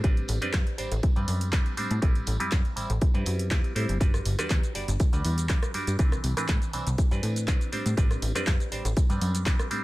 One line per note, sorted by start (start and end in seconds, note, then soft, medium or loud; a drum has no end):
0.04 0.24 A1 loud
0.04 0.39 G3 medium
0.04 0.39 C4 medium
0.04 0.39 D4 medium
0.04 0.39 B4 medium
0.04 kick loud
0.04 closed hi-hat medium
0.04 tambourine medium
0.17 closed hi-hat soft
0.17 tambourine soft
0.28 0.39 A1 medium
0.28 open hi-hat loud
0.28 tambourine loud
0.41 0.51 F#2 soft
0.41 0.75 G3 medium
0.41 0.76 C4 medium
0.41 0.76 D4 medium
0.41 0.76 B4 medium
0.41 closed hi-hat medium
0.41 tambourine soft
0.53 0.64 F#2 medium
0.53 kick loud
0.53 clap loud
0.53 closed hi-hat soft
0.67 closed hi-hat soft
0.67 tambourine soft
0.78 0.89 A1 soft
0.78 0.94 G3 medium
0.78 0.94 C4 medium
0.78 0.94 D4 medium
0.78 0.94 C5 medium
0.78 open hi-hat loud
0.78 tambourine medium
0.92 1.01 A1 loud
0.92 closed hi-hat soft
0.92 tambourine soft
1.03 kick loud
1.03 closed hi-hat medium
1.16 1.25 G2 medium
1.16 1.50 G3 medium
1.16 1.50 C4 medium
1.16 1.50 D4 medium
1.16 1.50 B4 loud
1.16 closed hi-hat soft
1.16 tambourine soft
1.28 1.61 F#2 medium
1.28 open hi-hat loud
1.28 tambourine medium
1.41 closed hi-hat medium
1.41 tambourine soft
1.52 1.75 G3 medium
1.52 1.75 C4 medium
1.52 1.75 D4 medium
1.52 1.75 B4 medium
1.52 kick loud
1.52 clap loud
1.52 closed hi-hat medium
1.65 closed hi-hat soft
1.65 tambourine soft
1.77 1.88 A2 soft
1.77 1.99 G3 medium
1.77 2.00 C4 medium
1.77 2.00 D4 medium
1.77 2.00 C5 medium
1.77 open hi-hat medium
1.77 tambourine medium
1.91 2.00 A2 medium
1.91 closed hi-hat medium
1.91 tambourine soft
2.02 2.22 A1 loud
2.02 2.37 G3 medium
2.02 2.37 C4 medium
2.02 2.37 E4 medium
2.02 2.37 B4 medium
2.02 kick loud
2.02 closed hi-hat medium
2.02 tambourine medium
2.15 closed hi-hat soft
2.15 tambourine soft
2.26 2.37 A1 medium
2.26 open hi-hat loud
2.26 tambourine loud
2.40 2.50 F#2 soft
2.40 2.74 G3 medium
2.40 2.74 C4 medium
2.40 2.74 E4 medium
2.40 2.74 B4 medium
2.40 closed hi-hat soft
2.51 2.62 F#2 medium
2.51 kick loud
2.51 clap loud
2.51 closed hi-hat medium
2.51 tambourine medium
2.65 closed hi-hat soft
2.65 tambourine soft
2.76 2.87 A1 soft
2.76 2.92 G3 medium
2.76 2.92 C4 medium
2.76 2.92 E4 medium
2.76 2.92 C5 medium
2.76 open hi-hat medium
2.76 tambourine loud
2.90 2.99 A1 loud
2.90 closed hi-hat soft
2.90 tambourine soft
3.01 kick loud
3.01 closed hi-hat soft
3.01 tambourine medium
3.14 3.24 G2 medium
3.14 3.48 G3 medium
3.14 3.48 C4 medium
3.14 3.48 E4 medium
3.14 3.49 B4 loud
3.14 closed hi-hat soft
3.14 tambourine soft
3.26 3.51 F#2 medium
3.26 open hi-hat loud
3.26 tambourine medium
3.39 closed hi-hat medium
3.39 tambourine soft
3.51 3.61 E2 medium
3.51 3.73 G3 medium
3.51 3.73 C4 medium
3.51 3.73 E4 medium
3.51 3.73 B4 medium
3.51 kick loud
3.51 clap loud
3.51 closed hi-hat soft
3.51 tambourine medium
3.64 closed hi-hat soft
3.64 tambourine soft
3.75 3.86 A2 medium
3.75 3.98 G3 medium
3.75 3.98 C4 medium
3.75 3.98 E4 medium
3.75 3.98 C5 medium
3.75 open hi-hat loud
3.75 tambourine medium
3.88 3.98 G1 medium
3.88 closed hi-hat soft
3.88 tambourine soft
4.00 4.35 G3 medium
4.00 4.36 D4 medium
4.00 4.36 F#4 medium
4.00 4.36 B4 medium
4.00 kick loud
4.00 closed hi-hat medium
4.00 tambourine soft
4.00 shaker medium
4.14 cross-stick medium
4.14 closed hi-hat soft
4.14 tambourine soft
4.14 shaker soft
4.25 4.36 G1 medium
4.25 open hi-hat loud
4.25 tambourine loud
4.39 4.48 E2 soft
4.39 4.72 G3 medium
4.39 4.72 D4 medium
4.39 4.73 F#4 medium
4.39 4.73 B4 medium
4.39 cross-stick medium
4.39 closed hi-hat soft
4.39 tambourine soft
4.39 shaker medium
4.50 4.61 E2 medium
4.50 kick loud
4.50 clap loud
4.50 closed hi-hat medium
4.50 tambourine medium
4.50 shaker medium
4.63 closed hi-hat soft
4.63 tambourine soft
4.63 shaker soft
4.75 4.86 G1 soft
4.75 4.91 G3 medium
4.75 4.91 D4 medium
4.75 4.91 F#4 medium
4.75 4.91 D5 medium
4.75 open hi-hat medium
4.75 tambourine medium
4.88 4.97 G1 loud
4.88 closed hi-hat soft
4.88 tambourine soft
4.88 shaker medium
5.00 kick loud
5.00 closed hi-hat soft
5.00 tambourine medium
5.00 shaker medium
5.13 5.22 D2 medium
5.13 5.47 G3 medium
5.13 5.47 D4 medium
5.13 5.47 F#4 medium
5.13 5.47 B4 loud
5.13 closed hi-hat soft
5.13 tambourine soft
5.13 shaker soft
5.25 5.58 E2 medium
5.25 open hi-hat loud
5.25 tambourine medium
5.38 closed hi-hat medium
5.38 tambourine soft
5.38 shaker medium
5.49 5.71 G3 medium
5.49 5.71 D4 medium
5.49 5.72 F#4 medium
5.49 5.72 B4 medium
5.49 kick loud
5.49 clap loud
5.49 closed hi-hat medium
5.49 shaker medium
5.63 cross-stick medium
5.63 closed hi-hat soft
5.63 tambourine soft
5.63 shaker soft
5.74 5.85 G2 soft
5.74 5.96 G3 medium
5.74 5.96 D4 medium
5.74 5.97 F#4 medium
5.74 5.97 D5 medium
5.74 open hi-hat medium
5.74 tambourine medium
5.87 5.97 G2 medium
5.87 closed hi-hat medium
5.87 tambourine soft
5.87 shaker medium
5.99 6.19 C2 loud
5.99 6.34 E3 medium
5.99 6.34 C4 medium
5.99 6.34 D4 medium
5.99 6.34 B4 medium
5.99 kick loud
5.99 closed hi-hat medium
5.99 tambourine soft
5.99 shaker medium
6.12 cross-stick medium
6.12 closed hi-hat soft
6.12 tambourine soft
6.12 shaker soft
6.24 6.34 C2 medium
6.24 open hi-hat loud
6.24 tambourine medium
6.37 6.46 A2 soft
6.37 6.71 E3 medium
6.37 6.71 C4 medium
6.37 6.71 D4 medium
6.37 6.71 B4 medium
6.37 cross-stick medium
6.37 closed hi-hat medium
6.37 tambourine soft
6.37 shaker medium
6.48 6.59 A2 medium
6.48 kick loud
6.48 clap loud
6.48 closed hi-hat medium
6.48 shaker medium
6.62 closed hi-hat soft
6.62 tambourine soft
6.62 shaker soft
6.73 6.84 C2 soft
6.73 6.89 E3 medium
6.73 6.89 C4 medium
6.73 6.89 D4 medium
6.73 6.89 C5 medium
6.73 open hi-hat medium
6.73 tambourine medium
6.87 6.96 C2 loud
6.87 closed hi-hat medium
6.87 shaker medium
6.98 kick loud
6.98 closed hi-hat medium
6.98 tambourine soft
6.98 shaker medium
7.11 7.21 G2 medium
7.11 7.45 E3 medium
7.11 7.45 C4 medium
7.11 7.45 D4 medium
7.11 7.45 B4 loud
7.11 closed hi-hat soft
7.11 tambourine soft
7.11 shaker soft
7.23 7.56 A2 medium
7.23 open hi-hat loud
7.23 tambourine medium
7.36 closed hi-hat medium
7.36 tambourine soft
7.36 shaker medium
7.48 7.70 E3 medium
7.48 7.70 C4 medium
7.48 7.70 D4 medium
7.48 7.70 B4 medium
7.48 kick loud
7.48 clap loud
7.48 closed hi-hat medium
7.48 shaker medium
7.60 closed hi-hat soft
7.60 tambourine soft
7.60 shaker soft
7.72 7.83 A2 soft
7.72 7.94 G3 medium
7.72 7.95 C4 medium
7.72 7.95 D4 medium
7.72 7.95 C5 medium
7.72 open hi-hat medium
7.72 tambourine medium
7.86 7.95 A2 medium
7.86 closed hi-hat medium
7.86 tambourine soft
7.86 shaker medium
7.97 8.17 A1 loud
7.97 8.32 G3 medium
7.97 8.32 C4 medium
7.97 8.32 D4 medium
7.97 8.32 B4 medium
7.97 kick loud
7.97 closed hi-hat medium
7.97 tambourine soft
7.97 shaker medium
8.11 cross-stick medium
8.11 closed hi-hat soft
8.11 tambourine soft
8.11 shaker soft
8.22 8.32 A1 medium
8.22 open hi-hat loud
8.22 tambourine medium
8.35 8.45 F#2 soft
8.35 8.69 G3 medium
8.35 8.69 C4 medium
8.35 8.69 D4 medium
8.35 8.69 B4 medium
8.35 cross-stick medium
8.35 closed hi-hat medium
8.35 shaker medium
8.47 8.57 F#2 medium
8.47 kick medium
8.47 clap loud
8.47 closed hi-hat medium
8.47 shaker medium
8.60 closed hi-hat soft
8.60 tambourine soft
8.60 shaker soft
8.72 8.82 A1 soft
8.72 8.87 G3 medium
8.72 8.88 C4 medium
8.72 8.88 D4 medium
8.72 8.88 C5 medium
8.72 open hi-hat medium
8.72 tambourine medium
8.85 8.94 A1 loud
8.85 closed hi-hat medium
8.85 tambourine soft
8.85 shaker medium
8.97 kick loud
8.97 closed hi-hat medium
8.97 tambourine medium
8.97 shaker medium
9.10 9.19 G2 medium
9.10 9.43 G3 medium
9.10 9.43 C4 medium
9.10 9.44 D4 medium
9.10 9.44 B4 loud
9.10 closed hi-hat soft
9.10 tambourine soft
9.10 shaker soft
9.21 9.55 F#2 medium
9.21 open hi-hat loud
9.21 tambourine medium
9.34 closed hi-hat medium
9.34 tambourine soft
9.34 shaker medium
9.46 9.68 G3 medium
9.46 9.68 C4 medium
9.46 9.68 D4 medium
9.46 9.68 B4 medium
9.46 kick loud
9.46 clap loud
9.46 closed hi-hat medium
9.46 shaker medium
9.59 cross-stick medium
9.59 closed hi-hat soft
9.59 tambourine soft
9.59 shaker soft
9.71 9.82 A2 soft
9.71 9.84 G3 medium
9.71 9.84 C4 medium
9.71 9.84 D4 medium
9.71 9.84 C5 medium
9.71 open hi-hat medium
9.71 tambourine medium